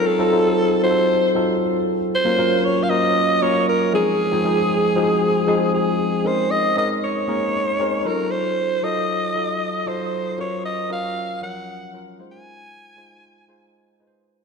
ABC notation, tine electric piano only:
X:1
M:4/4
L:1/16
Q:1/4=116
K:Fphr
V:1 name="Tine electric piano"
[G,CEF=A] [G,CEFA] [G,CEF_A=A]4 [G,CEFGA]4 [G,CEFA]6 | z [G,B,DFB] [G,B,DFB]4 [G,B,DFB]4 [G,B,DFB]4 [F,A,CEA]2- | [F,A,CEA] [F,A,CEA] [F,A,CEA]4 [F,A,CEGA]4 [F,A,CEA]6 | [A,CDEB]4 [A,CDEB]4 [A,B,DEB]4 [A,CDEB]2 [G,EF=A]2- |
[G,EF=A]4 [G,EFA]4 [G,EFA]4 [G,EFA]4 | [G,DFB]4 [G,DFB]4 [F,G,DB]4 [G,DFB]2 [A,EFc]2- | [A,EFc]4 [A,EFc]4 [A,EFc]4 [A,EF_c=c]4 |]